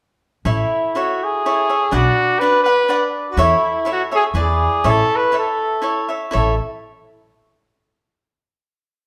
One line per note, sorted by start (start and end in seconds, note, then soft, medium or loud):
0.45 0.62 A1 medium
0.45 0.94 E4 medium
0.45 0.98 E4 medium
0.45 0.94 A4 soft
0.45 0.95 C#5 medium
0.45 0.96 E5 medium
0.95 1.44 E4 soft
0.95 1.25 F#4 medium
0.95 1.44 A4 soft
0.95 1.45 C#5 soft
0.95 1.45 E5 soft
1.24 1.96 G#4 medium
1.46 1.70 E4 soft
1.46 1.69 A4 soft
1.46 1.68 C#5 soft
1.46 1.68 E5 medium
1.69 1.92 A4 soft
1.69 1.92 C#5 soft
1.69 1.92 E5 soft
1.91 2.08 B1 medium
1.91 2.40 D4 medium
1.91 2.41 F#4 medium
1.91 2.41 B4 medium
1.91 2.41 D5 medium
1.91 2.41 F#5 medium
2.39 2.66 D4 soft
2.39 2.63 B4 medium
2.39 2.66 B4 soft
2.39 2.66 D5 medium
2.43 2.65 F#5 soft
2.63 3.09 B4 medium
2.63 2.89 D5 soft
2.63 2.89 F#5 soft
2.68 2.88 B4 soft
2.88 3.37 D4 soft
2.88 3.38 B4 soft
2.88 3.38 D5 medium
2.88 3.38 F#5 medium
3.31 3.43 F#4 medium
3.37 3.53 E2 medium
3.37 3.85 E4 medium
3.37 3.85 A4 medium
3.37 3.85 C#5 medium
3.37 3.87 E5 medium
3.42 3.88 E4 medium
3.85 4.11 E4 soft
3.85 4.11 A4 soft
3.85 4.11 C#5 medium
3.85 4.10 E5 medium
3.92 4.02 F#4 medium
4.11 4.25 G#4 medium
4.11 4.35 A4 soft
4.11 4.35 C#5 soft
4.11 4.35 E5 soft
4.34 4.66 E2 medium
4.34 4.84 E4 medium
4.34 4.84 G#4 soft
4.34 4.84 B4 soft
4.34 4.85 D5 medium
4.42 4.90 G#4 medium
4.84 5.01 A1 medium
4.84 5.31 E4 medium
4.84 5.32 A4 medium
4.84 5.32 C#5 medium
4.84 5.34 E5 medium
4.89 5.18 A4 medium
5.16 5.37 B4 medium
5.32 5.81 E4 soft
5.32 5.82 A4 soft
5.32 5.83 C#5 soft
5.32 5.83 E5 soft
5.39 6.08 A4 medium
5.82 6.09 E4 soft
5.82 6.09 A4 soft
5.82 6.09 C#5 soft
5.82 6.07 E5 soft
6.09 6.31 A4 soft
6.09 6.32 C#5 soft
6.09 6.32 E5 soft
6.31 6.58 A1 medium
6.31 6.53 E4 medium
6.31 6.54 A4 medium
6.31 6.58 A4 medium
6.31 6.54 C#5 medium
6.31 6.54 E5 medium